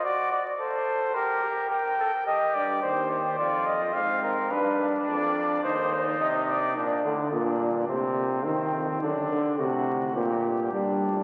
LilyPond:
<<
  \new Staff \with { instrumentName = "Cornet" } { \time 4/4 \key g \phrygian \tempo 4 = 107 d''8 d''8 c''4 bes'4 g''4 | ees''8 d''8 c''8 c''8 d''8 ees''8 f''8 bes'8 | b'8 r8 d''4 c''8 c''8 ees''8 d''8 | r1 |
r1 | }
  \new Staff \with { instrumentName = "Flugelhorn" } { \time 4/4 \key g \phrygian fis'8 r8 a'4 g'8 g'8 bes'8 a'8 | g'4 g'4 f'4 c'4 | d'2 ees'2 | d'8 r8 d'4 c'4 c'4 |
d'4 fis'4 g'4 d'4 | }
  \new Staff \with { instrumentName = "Trombone" } { \clef bass \time 4/4 \key g \phrygian r1 | r1 | r1 | r8 d8 bes,4 c4 ees4 |
d8 d8 c4 bes,4 g4 | }
  \new Staff \with { instrumentName = "Bass trombone" } { \clef bass \time 4/4 \key g \phrygian r1 | r8 g,8 ees,4 f,4 aes,4 | g,8 g,8 f,4 ees,4 c4 | bes,8 a,8 g,8 g,8 a,8 bes,8 c8 f,8 |
fis,8 r8 a,4 g,8 g,8 bes,8 a,8 | }
>>